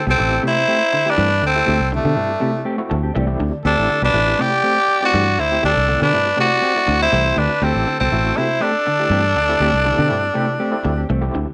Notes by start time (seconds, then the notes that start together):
0.07 C2 B2 G4 A4
0.11 C4
0.18 A1 A3 C4 E4 G4, muted clean electric guitar stroke
0.43 C3 A3 C4 G4 C5
0.48 E4
0.56 muted clean electric guitar stroke
0.68 A3 C4 G4
0.80 muted clean electric guitar stroke
0.93 D3, muted clean electric guitar stroke
1.06 A3 C4 E4 G4 B4
1.10 D4
1.18 G2 E3 A3 C4 G4
1.31 muted clean electric guitar stroke
1.41 D2 D3, muted clean electric guitar stroke
1.46 C4 A4
1.56 A3 C4 E4 G4
1.66 D2 A3 C4 G4
1.80 C2, muted clean electric guitar stroke
1.91 D3 A3 C4 E4 G4, muted clean electric guitar stroke
1.96 A3 D4
2.04 B2 D3 C4 G4
2.16 G2 A3 C4 E4 G4, muted clean electric guitar stroke
2.39 C3 A3 C4 E4 G4
2.54 muted clean electric guitar stroke
2.65 A3 C4 G4
2.78 A3 C4 E4 F#4, muted clean electric guitar stroke
2.89 D2 D3 A5, muted clean electric guitar stroke
3.03 C4 G4
3.14 C2 E3 A3 C4 G4 D5
3.26 A3 C4 E4 G4, muted clean electric guitar stroke
3.40 D2 D3, muted clean electric guitar stroke
3.64 D2 C4 D4 G4 A4, muted clean electric guitar stroke
3.77 A1 A3 C4 E4 G4
3.89 D3, muted clean electric guitar stroke
4.02 C2 B2 C4 D4 G4 B4
4.13 A1 A3 C4 E4 G4, muted clean electric guitar stroke
4.39 C3 A3 C4 G4 D5
4.52 muted clean electric guitar stroke
4.63 A3 C4 G4
4.76 muted clean electric guitar stroke
4.88 muted clean electric guitar stroke
5.01 A3 C4 E4 G4 D5
5.05 F#4
5.13 G2 E3 A3 C4 G4
5.26 muted clean electric guitar stroke
5.38 D2 D3 E4 C5, muted clean electric guitar stroke
5.52 A3 C4 E4 G4
5.63 D2 A3 C4 D4 G4 A4
5.76 C2, muted clean electric guitar stroke
5.87 D3 A3 C4 E4 A4, muted clean electric guitar stroke
6.00 B2 D3 C4 D4 G4 B4
6.13 G2 A3 C4 E4 G4
6.36 C3 A3 C4 E4 G4 D5
6.41 F#4
6.50 muted clean electric guitar stroke
6.62 C4 G4, muted clean electric guitar stroke
6.76 A3 C4 E4 F#4, muted clean electric guitar stroke
6.88 D2 D3, muted clean electric guitar stroke
7.01 C4 E4 G4 C5
7.12 C2 E3 A3 C4 G4
7.25 A3 C4 E4 G4, muted clean electric guitar stroke
7.37 D2 D3 D4 B4, muted clean electric guitar stroke
7.62 D2 A3 C4 G4 A4
7.75 A1 A3 C4 E4 G4, muted clean electric guitar stroke
7.86 D3, muted clean electric guitar stroke
8.00 C2 B2 C4 A4
8.11 A1 A3 C4 E4 F#4, muted clean electric guitar stroke
8.36 C3 A3 C4 E4 G4 C5
8.49 muted clean electric guitar stroke
8.60 A3 C4 D4 G4 A4
8.74 muted clean electric guitar stroke
8.87 D3, muted clean electric guitar stroke
8.99 A3 C4 E4 G4
9.10 G2 E3 A3 C4 G4
9.24 muted clean electric guitar stroke
9.35 D2 D3, muted clean electric guitar stroke
9.49 A3 C4 E4 G4
9.60 D2 A3 C4 G4
9.73 C2, muted clean electric guitar stroke
9.84 D3 A3 C4 E4 G4, muted clean electric guitar stroke
9.99 B2 D3 C4 G4
10.08 G2 A3 C4 E4 G4, muted clean electric guitar stroke
10.34 C3 A3 C4 E4 G4
10.48 muted clean electric guitar stroke
10.59 A3 C4 G4
10.72 A3 C4 E4 G4, muted clean electric guitar stroke
10.85 D2 D3, muted clean electric guitar stroke
10.98 C4 G4
11.09 C2 E3 A3 C4
11.21 A3 C4 E4 G4, muted clean electric guitar stroke
11.34 D2 D3, muted clean electric guitar stroke